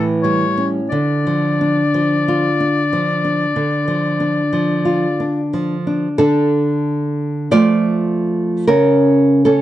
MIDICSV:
0, 0, Header, 1, 3, 480
1, 0, Start_track
1, 0, Key_signature, -1, "minor"
1, 0, Tempo, 1360544
1, 330, Time_signature, 4, 2, 24, 8
1, 809, Tempo, 1293103
1, 1769, Tempo, 1327434
1, 2729, Tempo, 1160542
1, 3590, End_track
2, 0, Start_track
2, 0, Title_t, "Oboe"
2, 0, Program_c, 0, 68
2, 80, Note_on_c, 0, 73, 52
2, 237, Note_off_c, 0, 73, 0
2, 317, Note_on_c, 0, 74, 50
2, 1990, Note_off_c, 0, 74, 0
2, 3590, End_track
3, 0, Start_track
3, 0, Title_t, "Nylon-string guitar"
3, 0, Program_c, 1, 24
3, 0, Note_on_c, 1, 45, 46
3, 0, Note_on_c, 1, 52, 34
3, 86, Note_on_c, 1, 55, 36
3, 157, Note_off_c, 1, 52, 0
3, 203, Note_on_c, 1, 61, 34
3, 280, Note_off_c, 1, 55, 0
3, 312, Note_off_c, 1, 45, 0
3, 324, Note_on_c, 1, 50, 39
3, 327, Note_off_c, 1, 61, 0
3, 447, Note_on_c, 1, 53, 30
3, 568, Note_on_c, 1, 62, 33
3, 642, Note_off_c, 1, 53, 0
3, 685, Note_on_c, 1, 53, 34
3, 760, Note_off_c, 1, 62, 0
3, 806, Note_on_c, 1, 65, 37
3, 879, Note_off_c, 1, 53, 0
3, 924, Note_on_c, 1, 62, 31
3, 1002, Note_off_c, 1, 65, 0
3, 1045, Note_on_c, 1, 53, 35
3, 1120, Note_off_c, 1, 62, 0
3, 1162, Note_on_c, 1, 62, 30
3, 1239, Note_off_c, 1, 53, 0
3, 1273, Note_off_c, 1, 50, 0
3, 1280, Note_on_c, 1, 50, 34
3, 1357, Note_off_c, 1, 62, 0
3, 1397, Note_on_c, 1, 53, 30
3, 1517, Note_on_c, 1, 62, 33
3, 1594, Note_off_c, 1, 53, 0
3, 1638, Note_on_c, 1, 53, 32
3, 1715, Note_off_c, 1, 62, 0
3, 1759, Note_on_c, 1, 65, 32
3, 1835, Note_off_c, 1, 53, 0
3, 1885, Note_on_c, 1, 62, 32
3, 1957, Note_off_c, 1, 65, 0
3, 2006, Note_on_c, 1, 53, 33
3, 2082, Note_off_c, 1, 62, 0
3, 2127, Note_on_c, 1, 62, 28
3, 2200, Note_off_c, 1, 53, 0
3, 2229, Note_off_c, 1, 50, 0
3, 2240, Note_off_c, 1, 62, 0
3, 2240, Note_on_c, 1, 69, 67
3, 2241, Note_on_c, 1, 50, 52
3, 2244, Note_on_c, 1, 62, 53
3, 2709, Note_off_c, 1, 69, 0
3, 2710, Note_off_c, 1, 50, 0
3, 2711, Note_off_c, 1, 62, 0
3, 2721, Note_on_c, 1, 53, 46
3, 2723, Note_on_c, 1, 74, 80
3, 2725, Note_on_c, 1, 57, 51
3, 2725, Note_on_c, 1, 65, 59
3, 3191, Note_off_c, 1, 53, 0
3, 3191, Note_off_c, 1, 74, 0
3, 3193, Note_off_c, 1, 57, 0
3, 3193, Note_off_c, 1, 65, 0
3, 3201, Note_on_c, 1, 70, 66
3, 3203, Note_on_c, 1, 49, 50
3, 3205, Note_on_c, 1, 61, 54
3, 3509, Note_off_c, 1, 61, 0
3, 3511, Note_off_c, 1, 70, 0
3, 3521, Note_on_c, 1, 69, 65
3, 3525, Note_on_c, 1, 61, 47
3, 3590, Note_off_c, 1, 49, 0
3, 3590, Note_off_c, 1, 61, 0
3, 3590, Note_off_c, 1, 69, 0
3, 3590, End_track
0, 0, End_of_file